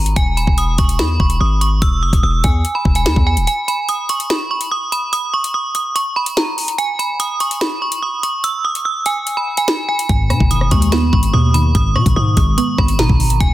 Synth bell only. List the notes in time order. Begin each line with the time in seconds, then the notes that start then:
Already playing: A#5
0.16 G#5
0.37 B5
0.58 D#6
0.78 C#6
0.99 B5
1.20 C#6
1.41 D#6
1.61 C#6
1.82 E6
2.03 D#6
2.23 E6
2.44 G#5
2.75 B5
2.96 G#5
3.06 B5
3.27 G#5
3.47 G#5
3.68 B5
3.89 D#6
4.10 C#6
4.30 B5
4.51 C#6
4.71 D#6
4.92 B5
5.13 D#6
5.34 C#6
5.54 D#6
5.75 D#6
5.96 C#6
6.16 B5
6.37 A#5
6.78 G#5
6.99 B5
7.20 D#6
7.40 C#6
7.61 B5
7.82 C#6
8.03 D#6
8.23 C#6
8.44 E6
8.65 D#6
8.85 E6
9.06 G#5
9.37 B5
9.58 G#5
9.68 B5
9.89 G#5
10.09 G#5
10.30 B5
10.51 D#6
10.72 C#6
10.92 B5
11.13 C#6
11.34 D#6
11.54 B5
11.75 D#6
11.96 C#6
12.16 D#6
12.37 D#6
12.58 C#6
12.79 B5
12.99 A#5
13.41 G#5